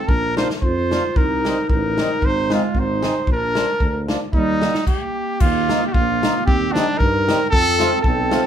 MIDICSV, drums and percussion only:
0, 0, Header, 1, 2, 480
1, 0, Start_track
1, 0, Key_signature, -3, "major"
1, 0, Tempo, 530035
1, 83, Time_signature, 2, 2, 24, 8
1, 7667, End_track
2, 0, Start_track
2, 0, Title_t, "Drums"
2, 78, Note_on_c, 9, 36, 76
2, 168, Note_off_c, 9, 36, 0
2, 336, Note_on_c, 9, 38, 74
2, 426, Note_off_c, 9, 38, 0
2, 454, Note_on_c, 9, 38, 57
2, 545, Note_off_c, 9, 38, 0
2, 563, Note_on_c, 9, 36, 57
2, 653, Note_off_c, 9, 36, 0
2, 828, Note_on_c, 9, 38, 63
2, 918, Note_off_c, 9, 38, 0
2, 1052, Note_on_c, 9, 36, 78
2, 1143, Note_off_c, 9, 36, 0
2, 1312, Note_on_c, 9, 38, 70
2, 1403, Note_off_c, 9, 38, 0
2, 1535, Note_on_c, 9, 36, 66
2, 1626, Note_off_c, 9, 36, 0
2, 1790, Note_on_c, 9, 38, 75
2, 1880, Note_off_c, 9, 38, 0
2, 2012, Note_on_c, 9, 36, 55
2, 2103, Note_off_c, 9, 36, 0
2, 2267, Note_on_c, 9, 38, 72
2, 2357, Note_off_c, 9, 38, 0
2, 2487, Note_on_c, 9, 36, 54
2, 2577, Note_off_c, 9, 36, 0
2, 2740, Note_on_c, 9, 38, 77
2, 2830, Note_off_c, 9, 38, 0
2, 2964, Note_on_c, 9, 36, 67
2, 3055, Note_off_c, 9, 36, 0
2, 3218, Note_on_c, 9, 38, 73
2, 3308, Note_off_c, 9, 38, 0
2, 3444, Note_on_c, 9, 36, 59
2, 3535, Note_off_c, 9, 36, 0
2, 3699, Note_on_c, 9, 38, 69
2, 3790, Note_off_c, 9, 38, 0
2, 3922, Note_on_c, 9, 36, 64
2, 4013, Note_off_c, 9, 36, 0
2, 4180, Note_on_c, 9, 38, 73
2, 4271, Note_off_c, 9, 38, 0
2, 4298, Note_on_c, 9, 38, 57
2, 4388, Note_off_c, 9, 38, 0
2, 4409, Note_on_c, 9, 36, 71
2, 4411, Note_on_c, 9, 49, 61
2, 4499, Note_off_c, 9, 36, 0
2, 4502, Note_off_c, 9, 49, 0
2, 4892, Note_on_c, 9, 49, 67
2, 4897, Note_on_c, 9, 36, 83
2, 4983, Note_off_c, 9, 49, 0
2, 4988, Note_off_c, 9, 36, 0
2, 5156, Note_on_c, 9, 38, 80
2, 5156, Note_on_c, 9, 44, 46
2, 5247, Note_off_c, 9, 38, 0
2, 5247, Note_off_c, 9, 44, 0
2, 5383, Note_on_c, 9, 36, 68
2, 5474, Note_off_c, 9, 36, 0
2, 5643, Note_on_c, 9, 38, 82
2, 5643, Note_on_c, 9, 44, 46
2, 5733, Note_off_c, 9, 38, 0
2, 5733, Note_off_c, 9, 44, 0
2, 5865, Note_on_c, 9, 36, 83
2, 5955, Note_off_c, 9, 36, 0
2, 6119, Note_on_c, 9, 38, 80
2, 6119, Note_on_c, 9, 44, 51
2, 6209, Note_off_c, 9, 38, 0
2, 6209, Note_off_c, 9, 44, 0
2, 6343, Note_on_c, 9, 36, 68
2, 6433, Note_off_c, 9, 36, 0
2, 6599, Note_on_c, 9, 38, 93
2, 6599, Note_on_c, 9, 44, 50
2, 6689, Note_off_c, 9, 38, 0
2, 6689, Note_off_c, 9, 44, 0
2, 6817, Note_on_c, 9, 36, 74
2, 6907, Note_off_c, 9, 36, 0
2, 7063, Note_on_c, 9, 38, 73
2, 7063, Note_on_c, 9, 44, 45
2, 7154, Note_off_c, 9, 38, 0
2, 7154, Note_off_c, 9, 44, 0
2, 7283, Note_on_c, 9, 36, 71
2, 7374, Note_off_c, 9, 36, 0
2, 7530, Note_on_c, 9, 38, 85
2, 7530, Note_on_c, 9, 44, 53
2, 7621, Note_off_c, 9, 38, 0
2, 7621, Note_off_c, 9, 44, 0
2, 7667, End_track
0, 0, End_of_file